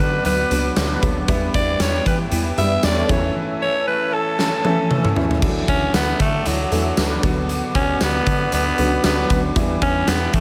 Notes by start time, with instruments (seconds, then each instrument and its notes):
Already playing: overdriven electric guitar F#3 B3 D4, grand piano F#3 B3 D4 F#4, clean electric guitar F#3 B3 D4, flute section B4 D5 F#5 D6
0.00 picked electric bass D3, clean electric guitar F#4, alto saxophone B4
0.23 picked electric bass D2, overdriven electric guitar B2, analog polysynth F#3 D4 B4, clean electric guitar B3, alto saxophone B4, closed hi-hat
0.27 overdriven electric guitar F#3 B3
0.50 picked electric bass C#2, grand piano F#3 B3 D4 F#4, analog polysynth F#3 D4 B4, clean electric guitar D4, closed hi-hat
0.76 picked electric bass D2, analog polysynth F#3 D4 B4, clean electric guitar F#4, snare, closed hi-hat, tambourine
1.02 picked electric bass D2, grand piano F#3 B3 D4 F#4, clean electric guitar B3, kick, closed hi-hat
1.28 picked electric bass E2, overdriven electric guitar E3 B3 E4, grand piano G3 B3 D4 E4, clean electric guitar B3, flute section E5 G5, kick, closed hi-hat
1.53 picked electric bass E2, overdriven electric guitar B3 E4, clean electric guitar D4, alto saxophone D5, kick, closed hi-hat
1.80 picked electric bass E2, clean electric guitar B3, alto saxophone C#5, snare, closed hi-hat, tambourine
2.06 picked electric bass E3, clean electric guitar G4, alto saxophone B4, kick, closed hi-hat
2.31 picked electric bass E2, overdriven electric guitar E3 B3 E4, analog polysynth G3 E4 B4, clean electric guitar B3, closed hi-hat
2.57 picked electric bass F#2, grand piano G3 B3 D4 E4, analog polysynth G3 E4 B4, clean electric guitar D4, alto saxophone E5, closed hi-hat
2.83 picked electric bass E2, analog polysynth E3 A4 C#5, clean electric guitar G4, alto saxophone D5, snare, closed hi-hat, tambourine
3.09 picked electric bass E2, overdriven electric guitar A2 E3 A3, grand piano E3 A3 C#4 E4, clean electric guitar E3, flute section C#5 A5 E6, alto saxophone C#5, kick, closed hi-hat
3.35 clean electric guitar E3
3.60 overdriven electric guitar E3 A3, clean electric guitar C#4, alto saxophone C#5
3.87 clean electric guitar A3, alto saxophone B4
4.13 clean electric guitar A4, alto saxophone A4
4.37 overdriven electric guitar A2 E3, analog polysynth E3 C#4 A4, clean electric guitar A3, snare
4.44 overdriven electric guitar A3
4.64 grand piano E3 A3 C#4 E4, analog polysynth E3 C#4 A4, clean electric guitar B3, high tom
4.79 clean electric guitar C#4
4.91 analog polysynth E3 C#4 A4, clean electric guitar A4, mid tom
5.05 mid tom
5.16 grand piano E3 A3 C#4 E4, clean electric guitar A3, floor tom
5.31 floor tom
5.42 picked electric bass D2, overdriven electric guitar D3 A3 D4, grand piano E3 F#3 A3 D4 E4, flute section A4 E5 F#5 D6, kick, crash
5.67 picked electric bass D2, overdriven electric guitar A3 D4, alto saxophone C#4, kick, closed hi-hat
5.94 picked electric bass D2, alto saxophone B3, snare, closed hi-hat, tambourine
6.20 picked electric bass D3, alto saxophone A3, kick, closed hi-hat
6.45 picked electric bass D2, overdriven electric guitar D3 A3 D4, analog polysynth F#3 E4 A4, alto saxophone F#3, closed hi-hat
6.71 picked electric bass E2, grand piano E3 F#3 A3 D4 E4, analog polysynth F#3 E4 A4, closed hi-hat
6.97 picked electric bass D2, analog polysynth F#3 D4 B4, snare, closed hi-hat, tambourine
7.23 picked electric bass D2, overdriven electric guitar B2 F#3 B3, grand piano D3 F#3 B3 D4 F#4, flute section B4 D5, kick, closed hi-hat
7.49 closed hi-hat
7.74 picked electric bass D2, overdriven electric guitar F#3 B3, alto saxophone C#4, kick, closed hi-hat
8.01 picked electric bass D2, alto saxophone B3, snare, closed hi-hat, tambourine
8.26 picked electric bass D3, kick, closed hi-hat
8.50 picked electric bass D2, overdriven electric guitar B2, analog polysynth F#3 D4 B4, alto saxophone B3, closed hi-hat
8.54 overdriven electric guitar F#3 B3
8.78 picked electric bass C#2, grand piano D3 F#3 B3 C#4 F#4, analog polysynth F#3 D4 B4, closed hi-hat
8.85 grand piano D4
9.04 picked electric bass D2, analog polysynth F#3 D4 B4, alto saxophone B3, snare, closed hi-hat, tambourine
9.30 picked electric bass D2, grand piano D3 F#3 B3 D4 F#4, kick, closed hi-hat
9.55 overdriven electric guitar E2 B2 E3, picked electric bass E2, grand piano E3 G3 B3 D4 E4, flute section E5 G5, kick, closed hi-hat
9.81 picked electric bass E2, overdriven electric guitar B2 E3, alto saxophone C#4, kick, closed hi-hat
10.08 picked electric bass E2, alto saxophone B3, snare, closed hi-hat, tambourine
10.33 picked electric bass E3, alto saxophone A3, kick, closed hi-hat